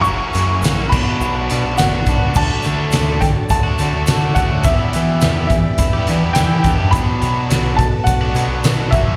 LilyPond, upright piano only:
\new Staff \with { instrumentName = "Upright piano" } { \time 4/4 \key b \minor \tempo 4 = 105 cis'''4. b''4 r8 fis''4 | a''4. g''8 a''4. fis''8 | e''4. e''4 r8 g''4 | b''4. a''8 fis''4. e''8 | }